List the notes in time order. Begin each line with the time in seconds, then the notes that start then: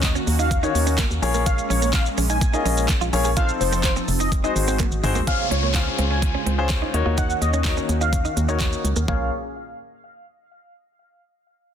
Already playing: D#2 D#3 A#3 C#4 F#4
0.03 D#5, kick, snare, clap, closed hi-hat, shaker
0.15 C#4, shaker
0.27 D#2, muted clean electric guitar stroke, open hi-hat, shaker
0.39 D#4 F5, shaker
0.51 kick, closed hi-hat, shaker
0.63 C#4 D#4 F#4 A#4 C#5, shaker
0.75 D#2, muted clean electric guitar stroke, open hi-hat, shaker
0.87 C#4, shaker
0.98 A#3, kick, snare, clap, closed hi-hat, shaker
1.11 D#2, shaker
1.22 A#1 G#3 C#4 F4 G#4 A#4 C#5, muted clean electric guitar stroke, open hi-hat, shaker
1.34 A#3, shaker
1.46 F5, kick, closed hi-hat, shaker
1.58 muted clean electric guitar stroke, shaker
1.70 A#1 C#4 C#5, open hi-hat, shaker
1.82 A#3, shaker
1.93 F5, muted clean electric guitar stroke, kick, snare, clap, closed hi-hat, shaker
2.06 shaker
2.18 A#1 C#4, open hi-hat, shaker
2.30 D#4 G#5, shaker
2.41 muted clean electric guitar stroke, kick, closed hi-hat, shaker
2.53 C#4 D#4 F4 G#4 A#4 D#5, shaker
2.65 A#1 C#4, open hi-hat, shaker
2.77 shaker
2.88 kick, snare, clap, closed hi-hat, shaker
3.01 A#1 F4, shaker
3.13 A#1 C#4 F4 G#4 A#4 C#5, muted clean electric guitar stroke, open hi-hat, shaker
3.25 G#4, shaker
3.37 F3 C4 D#4 F4 A4 C5 F5, kick, closed hi-hat, shaker
3.49 shaker
3.61 F1 C5, muted clean electric guitar stroke, open hi-hat, shaker
3.73 C4, shaker
3.83 C5, kick, snare, clap, closed hi-hat, shaker
3.96 C4, shaker
4.08 F1, muted clean electric guitar stroke, open hi-hat, shaker
4.20 D#4 D#5, shaker
4.32 G#3 F#4, kick, closed hi-hat, shaker
4.44 C4 D#4 F#4 G#4 C5 D#5, shaker
4.56 G#1, muted clean electric guitar stroke, open hi-hat, shaker
4.68 C4 C5, shaker
4.80 A#3, kick, clap, closed hi-hat, high tom, shaker
4.92 G#1, shaker
5.03 G#1 C4 D#4 F#4 G#4 C5, muted clean electric guitar stroke, mid tom, open hi-hat, shaker
5.15 A#3, floor tom, shaker
5.27 C#3 G#3 C#4 F4 G#4 C5 F5, kick, closed hi-hat, downlifter
5.39 muted clean electric guitar stroke
5.51 C#2 C#4 C#5, closed hi-hat
5.63 A#3
5.74 C#4 F4 G#4 C5 F5, muted clean electric guitar stroke, kick, snare, clap, closed hi-hat
5.99 C#2 C4, closed hi-hat
6.11 C#4 G#5
6.22 muted clean electric guitar stroke, kick, closed hi-hat
6.35 C#4
6.46 C#2 C4, closed hi-hat
6.58 C#4 F4 G#4 C5
6.69 kick, snare, clap, closed hi-hat
6.82 D#4
6.94 D#2 D#3 A#3 C#4 D#4 F#4 A#4 C#5, muted clean electric guitar stroke, closed hi-hat
7.06 D#2 F4
7.18 D#4 F#5, kick, closed hi-hat, shaker
7.30 shaker
7.42 D#2 D#5, muted clean electric guitar stroke, closed hi-hat, shaker
7.53 C#4, shaker
7.64 D#4 F#4 A#4 C#5 D#5, kick, snare, clap, closed hi-hat, shaker
7.77 C#4, shaker
7.89 D#2, muted clean electric guitar stroke, closed hi-hat, shaker
8.01 D#4 F5, shaker
8.13 kick, closed hi-hat, shaker
8.25 D#4, shaker
8.37 D#2, muted clean electric guitar stroke, closed hi-hat, shaker
8.48 C#4 D#4 F#4 A#4 C#5, shaker
8.60 A#3, kick, snare, clap, closed hi-hat, shaker
8.73 shaker
8.84 C#2, muted clean electric guitar stroke, closed hi-hat, shaker
8.96 D#2 A#3, shaker
9.08 A#1 A#2 A#3 C#4 F4 G#4 A#4 C#5 F5, kick, floor tom